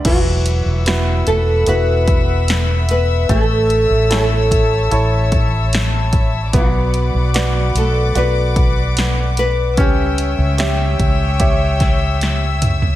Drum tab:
CC |x---------------|----------------|----------------|----------------|
HH |x-x-x-x-x-x-x-x-|x-x-x-x-x-x-x-x-|x-x-x-x-x-x-x-x-|x-x-x-x-x-x-x-x-|
SD |----o-------o---|----o-------o---|----o-------o---|----o-----o-o---|
T2 |----------------|----------------|----------------|--------------o-|
FT |----------------|----------------|----------------|---------------o|
BD |o---------o-----|o-----o---o---o-|o---------o-----|o-----o-o-o-----|